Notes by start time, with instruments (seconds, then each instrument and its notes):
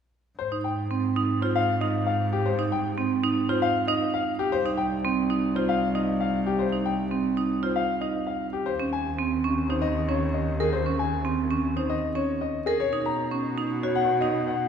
0.39 cello G#2, grand piano C5
0.52 marimba D#4
0.64 grand piano G5
0.91 marimba C4
1.16 marimba D#4
1.42 marimba F4, grand piano C5
1.56 grand piano F5
1.81 marimba D#4, grand piano D#5
2.07 grand piano F5
2.33 grand piano G4
2.46 grand piano C5
2.59 marimba D#4
2.72 grand piano G5
2.98 marimba C4
3.24 marimba D#4
3.49 marimba F4, grand piano C5
3.62 grand piano F5
3.88 marimba D#4, grand piano D#5
4.14 grand piano F5
4.39 grand piano G4
4.52 cello C2, grand piano C5
4.66 marimba D#4
4.77 grand piano G5
5.05 marimba C4
5.30 marimba D#4
5.55 marimba F4, grand piano C5
5.69 grand piano F5
5.95 marimba D#4, grand piano D#5
6.20 grand piano F5
6.46 grand piano G4
6.59 grand piano C5
6.72 marimba D#4
6.86 grand piano G5
7.11 marimba C4
7.37 marimba D#4
7.63 marimba F4, grand piano C5
7.76 grand piano F5
8.01 marimba D#4, grand piano D#5
8.27 grand piano F5
8.53 grand piano G4
8.66 cello D#2, grand piano C5
8.80 marimba C#4
8.93 grand piano G#5
9.19 marimba C4
9.44 marimba C#4
9.69 marimba D#4, grand piano C5
9.82 grand piano D#5
10.08 marimba C#4, grand piano C#5
10.34 grand piano D#5
10.60 grand piano G#4, marimba A#4
10.73 grand piano C5
10.86 marimba C#4
10.99 grand piano G#5
11.25 marimba C4
11.51 marimba C#4
11.76 marimba D#4, grand piano C5
11.90 grand piano D#5
12.15 marimba C#4, grand piano C#5
12.41 grand piano D#5
12.66 grand piano G#4, marimba A#4
12.80 cello B2, grand piano C#5
12.93 marimba D#4
13.06 grand piano A#5
13.32 marimba C#4
13.58 marimba D#4
13.83 marimba F#4, grand piano C#5
13.95 grand piano F#5
14.21 marimba D#4, grand piano D#5
14.47 grand piano F#5